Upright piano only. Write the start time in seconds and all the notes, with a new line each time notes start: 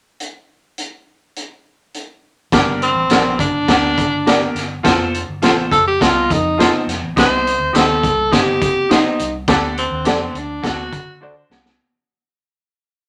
2.53 G2 D4 G4 A#4
3.10 D4 G4 A#4
3.68 D4 G4 A#4
4.26 D4 G4 A#4
4.83 F4 A4 C5
5.42 F4 A4 C5
6.00 F4 A4 D#5
6.58 F4 A4 C5
7.16 C3 D#4 G4 C5
7.73 D#4 G4 C5
8.31 D#4 G4 C5
8.89 D#4 G4 C5
9.48 D3 D4 G4 A4
10.05 D4 G4 A4
10.63 D3 D4 F#4 A4
11.21 D4 F#4 C5